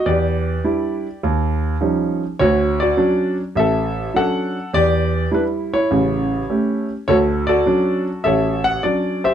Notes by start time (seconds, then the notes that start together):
0.06 E2 G4 D5
0.64 G3 D4 E4
1.23 D#2
1.81 F3 G3 C#4 D#4
2.39 D2 F#4 C#5
2.80 F#4 D5
2.97 F#3 C#4 D4
3.56 A1 A4 E5
4.14 F#3 C#4 D4 A4 F#5
4.73 E2 G4 D5
5.31 G3 D4 E4 B4
5.74 E4 C#5
5.91 A1 C#3
6.50 A3 C#4 G4
7.08 D2 F#4 A4 C#5
7.47 F#4 A4 D5
7.66 F#3 C#4 D4
8.24 A1 A4 C#5 E5
8.64 F#5
8.83 F#3 C#4 D4 D5
9.24 G4 C5 E5